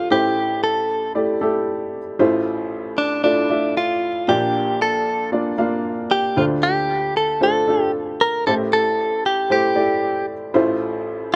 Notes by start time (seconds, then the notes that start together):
Already playing: D2 D3 A3 D4 F4 G4 C5
0.11 A1 A2 A3 E4 G4 C5
0.64 A4
1.15 A3 E4 G4 D5
1.41 A3 E4 G4 A4
2.19 A1 A2 A3 E4 F4 C5
2.98 D4
3.24 A3 D4 E4 F4 D5
3.50 A3 F4 D5 E5
3.77 F4
4.28 A#1 A#2 A#3 D4 F4 G4 D5
4.82 A4
5.32 A#3 D4 F4 D5
5.58 A#3 D4 F4 F5
6.11 G4
6.37 D2 D3 A3 D4 F4 C5
6.63 G4
7.17 A4
7.41 A3 D4 F4 A4 C5
7.67 A3 D4 F4 A4
8.21 A#4
8.47 A1 A2 A3 E4 G4 A4 C5
8.73 A4
9.26 G4
9.50 A3 E4 G4 C5
9.75 A3 E4 G4 D5
10.54 A1 A2 A3 E4 F4 C5